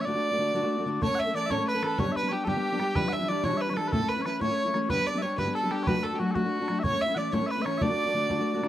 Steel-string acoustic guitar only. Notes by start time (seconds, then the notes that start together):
0.06 D3 A3 D4 F#4
0.14 A3 D4 F#4
0.31 A3 F#4
0.38 D3 A3 D4 F#4
0.53 D3 A3 D4 F#4
0.62 A3 D4 F#4
0.78 A3 D4 F#4
0.86 D3 A3 D4 F#4
1.01 A2 E3 A3 C#4 A4
1.09 A3 C#4 A4
1.26 A3 C#4 A4
1.34 E3 A3 C#4 A4
1.49 A2 E3 A3 C#4 A4
1.58 A3 C#4 A4
1.75 A3 C#4 A4
1.82 E3 A3 C#4 A4
1.98 G2 D3 G3 B3 D4 G4
2.07 G3 B3 D4 G4
2.23 G3 B3 D4
2.31 G3 B3 D4 G4
2.46 G2 D3 G3 B3 D4 G4
2.55 G3 B3 D4 G4
2.72 G3 B3 D4 G4
2.79 G3 B3 D4 G4
2.96 E2 B2 E3 G3 D4 E4
3.04 E3 G3 D4 E4
3.20 E3 G3 D4 E4
3.29 E3 G3 D4 E4
3.45 E2 B2 E3 G3 D4 E4
3.53 E3 G3 E4
3.69 E3 G3 D4 E4
3.76 E3 G3 D4 E4
3.92 A2 E3 A3 C#4 E4
4.01 A3 C#4 E4
4.18 A3 C#4 E4
4.25 E3 A3 C#4 E4
4.40 A2 E3 A3 C#4 E4
4.49 A3 C#4 E4
4.66 A3 C#4 E4
4.74 E3 A3 C#4 E4
4.89 G2 D3 G3 B3 D4 G4
4.98 G3 B3 D4 G4
5.13 G3 B3 D4 G4
5.22 G3 B3 D4 G4
5.38 G2 D3 G3 B3 D4 G4
5.46 G3 B3 D4 G4
5.63 G3 B3 D4 G4
5.71 G3 B3 D4 G4
5.87 F#3 A3 D4 F#4
5.96 A3 D4 F#4
6.12 A3 D4 F#4
6.19 F#3 A3 D4 F#4
6.35 F#3 A3 D4 F#4
6.45 A3 D4
6.60 A3 D4 F#4
6.68 F#3 A3 D4 F#4
6.83 A2 E3 A3 C#4 E4
6.91 A3 C#4 E4
7.08 A3 C#4 E4
7.16 E3 A3 C#4 E4
7.33 A2 E3 A3 C#4 E4
7.41 A3 C#4 E4
7.57 A3 C#4 E4
7.65 E3 A3 C#4 E4
7.81 D3 A3 D4 F#4
7.89 A3 F#4
8.06 A3 D4 F#4
8.14 D3 A3 D4 F#4
8.29 D3 A3 D4 F#4
8.38 A3 D4 F#4
8.54 A3 D4 F#4
8.62 D3 A3 D4 F#4